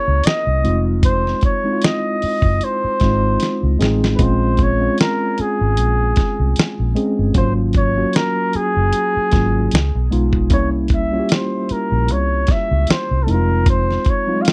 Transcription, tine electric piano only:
0.00 0.65 A#3 medium
0.00 0.65 C#4 medium
0.00 0.65 E4 medium
0.00 0.65 A#4 medium
0.63 1.43 G#3 medium
0.63 1.43 C4 medium
0.63 1.44 D#4 medium
0.63 1.44 F4 medium
1.64 2.75 G#3 medium
1.64 2.75 C4 medium
1.64 2.75 D#4 medium
1.64 1.71 E4 medium
1.72 2.79 F4 medium
3.01 3.66 G#3 medium
3.01 3.66 C4 medium
3.01 3.66 D#4 medium
3.01 3.67 F4 medium
3.79 4.12 G#3 medium
3.79 4.12 C4 medium
3.79 4.12 D#4 medium
3.79 4.13 G#4 medium
4.19 4.67 G#3 medium
4.19 4.67 C4 medium
4.19 4.68 C#4 medium
4.19 4.68 F4 medium
4.80 6.06 G#3 medium
4.80 6.06 C4 medium
4.80 6.07 C#4 medium
4.80 6.07 F4 medium
6.95 7.28 G#3 medium
6.95 7.28 C4 medium
6.95 7.28 C#4 medium
6.95 7.29 G#4 medium
7.34 7.83 F#3 medium
7.34 7.83 A#3 medium
7.34 7.83 C#4 medium
7.34 7.84 F4 medium
7.96 9.06 F#3 medium
7.96 9.07 A#3 medium
7.96 9.07 C#4 medium
7.96 9.07 F#4 medium
9.32 9.71 F#3 medium
9.32 9.72 A#3 medium
9.32 9.72 C#4 medium
9.32 9.72 F4 medium
10.11 10.43 G#3 medium
10.11 10.44 B3 medium
10.11 10.44 D#4 medium
10.11 10.44 F4 medium
10.51 10.99 G3 medium
10.51 10.99 A#3 medium
10.51 11.00 C#4 medium
10.51 11.00 E4 loud
11.12 12.38 G3 medium
11.12 12.38 A#3 medium
11.12 12.38 C#4 medium
11.12 11.18 F4 medium
11.20 12.42 G4 medium
13.27 14.06 G#3 medium
13.27 14.06 C4 medium
13.27 14.07 D#4 medium
13.27 13.35 E4 medium
13.34 14.10 F4 medium
14.27 14.33 F#3 medium
14.27 14.53 C4 medium
14.27 14.53 D#4 medium
14.27 14.53 F4 medium
14.34 14.53 G#3 medium

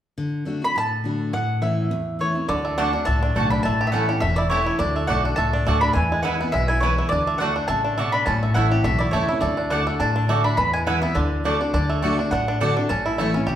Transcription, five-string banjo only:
2.49 2.90 D3 medium
2.65 3.06 A3 medium
2.78 2.92 D4 medium
2.93 3.21 D4 medium
3.06 3.65 A3 medium
3.23 3.35 D4 medium
3.36 3.50 D4 medium
3.52 3.65 D4 medium
3.65 4.07 A3 medium
3.81 4.08 G4 medium
3.93 4.35 C#4 medium
4.09 4.48 G4 medium
4.22 4.64 A3 medium
4.38 4.65 E4 medium
4.51 4.80 G4 medium
4.66 4.80 E4 medium
4.80 5.08 D4 medium
4.96 5.35 A3 medium
5.09 5.24 D4 medium
5.25 5.52 D4 medium
5.38 5.65 A3 medium
5.53 5.82 D4 medium
5.67 5.96 A3 medium
5.83 5.96 D4 medium
5.95 6.37 E3 medium
6.12 6.51 G#3 medium
6.25 6.66 E4 medium
6.41 6.80 B3 medium
6.54 6.95 G#3 medium
6.69 6.97 E4 medium
6.83 7.11 B3 medium
6.98 7.12 E4 medium
7.12 7.39 D4 medium
7.27 7.68 A3 medium
7.40 7.55 D4 medium
7.56 7.83 D4 medium
7.68 7.97 A3 medium
7.85 8.13 D4 medium
7.98 8.42 A3 medium
8.14 8.27 D4 medium
8.27 8.69 C#4 medium
8.43 8.82 A3 medium
8.55 8.97 E4 medium
8.72 9.11 G4 medium
8.84 9.12 A3 medium
9.00 9.27 E4 medium
9.13 9.40 A3 medium
9.28 9.42 E4 medium
9.42 9.84 A3 medium
9.57 9.69 D4 medium
9.70 9.99 D4 medium
9.87 10.27 A3 medium
10.00 10.15 D4 medium
10.16 10.43 D4 medium
10.29 10.58 A3 medium
10.44 10.58 D4 medium
10.58 11.00 E3 medium
10.74 11.13 G#3 medium
10.87 11.16 E4 medium
11.03 11.16 B3 medium
11.15 11.57 D3 medium
11.45 11.60 D4 medium
11.61 11.73 D4 medium
11.74 12.01 D4 medium
11.90 13.18 A3 medium
12.02 12.18 D4 medium
12.19 12.31 D4 medium
12.32 12.47 D4 medium
12.48 12.60 D4 medium
12.61 12.75 D4 medium
12.77 12.90 D4 medium
12.90 13.31 C#4 medium
13.06 13.45 E4 medium
13.18 13.55 A3 medium
13.34 13.55 C#4 medium
13.47 13.55 G4 medium

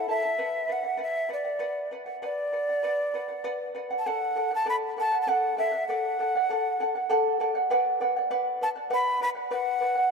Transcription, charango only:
0.08 0.24 E4 medium
0.08 0.23 A4 medium
0.08 0.24 E5 medium
0.08 0.22 A5 medium
0.23 0.38 E4 soft
0.23 0.39 A4 soft
0.23 0.39 A5 soft
0.38 0.67 B4 medium
0.38 0.68 D5 medium
0.38 0.68 F#5 medium
0.68 0.84 B4 medium
0.68 0.83 D5 medium
0.68 0.82 F#5 medium
0.83 0.96 D5 soft
0.83 0.97 F#5 medium
0.97 1.27 B4 medium
0.97 1.29 D5 medium
0.97 1.29 F#5 medium
1.29 1.45 B4 soft
1.29 1.45 D5 medium
1.29 1.43 F#5 medium
1.44 1.59 D5 soft
1.44 1.59 F#5 soft
1.59 1.90 B4 medium
1.59 1.91 D5 medium
1.59 1.91 F#5 medium
1.91 2.07 B4 medium
1.91 2.06 D5 medium
1.91 2.05 F#5 medium
2.06 2.22 D5 soft
2.06 2.21 F#5 medium
2.22 2.51 B4 medium
2.22 2.52 D5 medium
2.22 2.52 F#5 medium
2.52 2.68 B4 medium
2.52 2.69 D5 medium
2.52 2.68 F#5 medium
2.69 2.82 D5 soft
2.69 2.83 F#5 soft
2.83 3.13 B4 medium
2.83 3.14 D5 medium
2.83 3.14 F#5 medium
3.14 3.29 B4 medium
3.14 3.29 D5 medium
3.14 3.27 F#5 medium
3.28 3.43 D5 soft
3.28 3.44 F#5 medium
3.44 3.73 B4 medium
3.44 3.74 D5 loud
3.44 3.75 F#5 loud
3.75 3.90 B4 medium
3.75 3.91 D5 medium
3.75 3.89 F#5 medium
3.91 4.05 D5 soft
3.91 4.06 F#5 medium
4.06 4.34 A4 medium
4.06 4.35 D5 medium
4.06 4.36 F#5 medium
4.36 4.51 A4 medium
4.36 4.51 D5 medium
4.36 4.50 F#5 medium
4.51 4.65 D5 soft
4.51 4.66 F#5 medium
4.65 4.95 A4 medium
4.65 4.96 D5 medium
4.65 4.97 F#5 medium
4.97 5.12 A4 medium
4.97 5.12 D5 medium
4.97 5.11 F#5 medium
5.12 5.26 D5 soft
5.12 5.27 F#5 medium
5.27 5.56 A4 medium
5.27 5.57 D5 medium
5.27 5.57 F#5 loud
5.57 5.73 A4 medium
5.57 5.72 D5 medium
5.57 5.71 F#5 medium
5.72 5.88 D5 soft
5.72 5.88 F#5 medium
5.89 6.18 A4 medium
5.89 6.19 D5 medium
5.89 6.19 F#5 medium
6.19 6.34 A4 medium
6.19 6.34 D5 medium
6.19 6.34 F#5 medium
6.35 6.49 D5 medium
6.35 6.49 F#5 medium
6.50 6.79 A4 medium
6.50 6.79 D5 medium
6.50 6.80 F#5 medium
6.80 6.95 A4 medium
6.80 6.95 D5 medium
6.80 6.94 F#5 medium
6.95 7.09 D5 soft
6.95 7.09 F#5 medium
7.09 7.39 A4 loud
7.09 7.39 D5 medium
7.09 7.40 F#5 loud
7.40 7.55 A4 medium
7.40 7.55 D5 medium
7.40 7.54 F#5 medium
7.55 7.70 D5 soft
7.55 7.70 F#5 medium
7.70 7.99 B4 loud
7.70 8.00 D5 loud
7.70 8.01 F#5 loud
8.00 8.15 B4 medium
8.00 8.16 D5 medium
8.00 8.15 F#5 medium
8.16 8.30 D5 medium
8.16 8.30 F#5 medium
8.31 8.60 B4 medium
8.31 8.61 D5 medium
8.31 8.61 F#5 medium
8.61 8.76 B4 medium
8.61 8.76 D5 medium
8.61 8.74 F#5 medium
8.76 8.89 D5 soft
8.76 8.89 F#5 medium
8.90 9.19 B4 medium
8.90 9.20 D5 loud
8.90 9.21 F#5 loud
9.20 9.36 B4 medium
9.20 9.35 D5 medium
9.20 9.34 F#5 medium
9.35 9.50 D5 soft
9.35 9.50 F#5 soft
9.51 9.79 B4 medium
9.51 9.80 D5 medium
9.51 9.81 F#5 medium
9.80 9.96 B4 medium
9.80 9.96 D5 medium
9.80 9.94 F#5 medium
9.95 10.09 D5 soft
9.95 10.10 F#5 soft

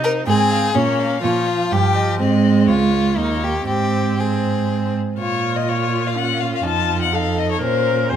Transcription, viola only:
0.00 0.27 D#4 medium
0.27 0.74 C4 medium
0.75 1.22 A#3 medium
1.24 2.21 F3 medium
2.20 3.16 G#3 medium
3.17 3.66 A#3 soft
3.67 4.91 C4 soft
5.18 6.17 F4 medium
6.15 6.66 C#4 soft
6.64 7.14 F4 medium
7.12 7.61 A4 soft
7.61 8.11 A#4 medium
8.09 8.16 C5 medium

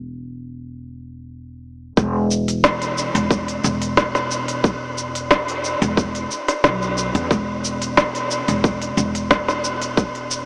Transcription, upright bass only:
0.00 1.94 E1 medium
1.97 3.08 E1 medium
3.15 3.58 E1 medium
3.64 5.75 E1 medium
5.82 6.24 E1 medium
6.64 7.08 B1 medium
7.15 7.27 E2 loud
7.31 8.41 E1 loud
8.48 8.91 E1 medium
8.97 10.45 E1 medium

